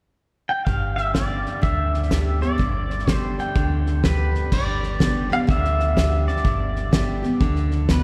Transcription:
0.49 G5
0.65 G1 G2 F5, kick, snare
0.96 E5, snare
1.14 D3 G3 B3 G4 D5, kick, snare, hi-hat pedal
1.46 snare
1.62 D2 D3 E5, kick, snare
1.94 snare
2.03 snare
2.11 D3 G3 B3 G4, kick, snare, hi-hat pedal
2.41 B3 G4 D5, snare
2.58 G1 G2, kick, snare
2.90 snare
2.99 snare
3.07 D3 G3 B3 G4, kick, snare, hi-hat pedal
3.12 C5
3.38 G5, snare
3.55 D2 D3, kick, snare
3.86 snare
4.03 D3 G3 B3 G4 B4, kick, snare, hi-hat pedal
4.35 snare
4.52 G1 G2 D5, kick, snare, crash
4.83 snare
4.99 D3 G3 B3 G4, kick, snare, hi-hat pedal
5.30 B3 G4 F5, snare
5.47 D2 D3 E5, kick, snare
5.65 snare
5.80 snare
5.96 D3 G3 B3 G4, kick, snare, hi-hat pedal
6.28 D5, snare
6.36 snare
6.44 G1 G2, kick, snare
6.76 snare
6.91 D3 G3 B3 G4, kick, snare, hi-hat pedal
7.22 B3 G4, snare
7.40 D2 D3, kick, snare
7.56 snare
7.71 snare
7.88 D3 G3 B3 G4 B4, kick, snare, hi-hat pedal

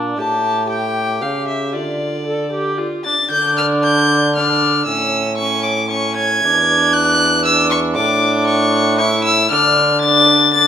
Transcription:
Already playing: A#2 D4
0.17 A2 G4 A5
0.69 G4 G5
1.22 C#3 F5
1.48 E5
1.73 D3 F4 D5
2.26 A4
2.53 G4
2.78 F4
3.05 D4 A6
3.31 D3 D4 G6
3.57 F6
3.83 G6
4.35 D4 F6
4.86 A2 C#4 E6
5.38 C#4 C#6
5.63 D6
5.90 C#4 C#6
6.16 G#6
6.42 E2 D4
6.93 F#6
7.45 D4 E6
7.71 C#6
7.95 A2 D4 D6
8.47 C#6
8.98 E4 C#6
9.24 E6
9.51 D3 D4 F6
10.01 D4 A6
10.53 D4 A6

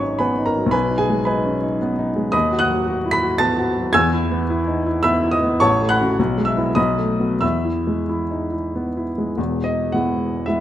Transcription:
Already playing: G#1 F#3 C#4 B4 C#5 D#5 G#5 B5 C#6 D#6
0.00 D#4
0.19 B3 B4 G#5 B5
0.38 D#4
0.46 A#4 A#5
0.56 F#3
0.66 B1
0.71 B4 G#5 B5
0.90 D#4
0.98 G#4 G#5
1.09 G#3
1.25 D#4 B4 G#5 B5
1.44 C#4
1.63 D#4
1.82 B3
1.99 D#4
2.16 G#3
2.32 D#2 D#5 B5 D#6
2.51 F#4
2.59 F#5 D#6 F#6
2.69 F#3
2.87 F#4
3.06 E4
3.11 B5 B6
3.23 F#4
3.38 B3 A5 A6
3.58 F#4
3.77 F#3
3.93 E2 G#5 E6 G#6
4.13 E4
4.32 B3
4.50 E4
4.68 D#4
4.87 E4
5.03 B3 E5 B5 E6
5.23 E4
5.31 D#5 D#6
5.42 B3
5.60 A1 C#5 A5 C#6
5.81 A3
5.89 F#5 B5 F#6
6.00 C#4 F#4
6.19 B1
6.38 G#3
6.45 E5 E6
6.57 B3 E4
6.75 B1 D#5 B5 D#6
6.98 A3
7.19 B3 F#4
7.41 E2 E5 B5 E6
7.65 E4
7.87 G#3
8.09 E4
8.31 D#4
8.52 E4
8.75 B3
8.97 E4
9.18 G#3
9.37 E1 E2
9.64 D#5
9.92 G#3 B3 E4 F#5
10.46 G#3 B3 E4 E5

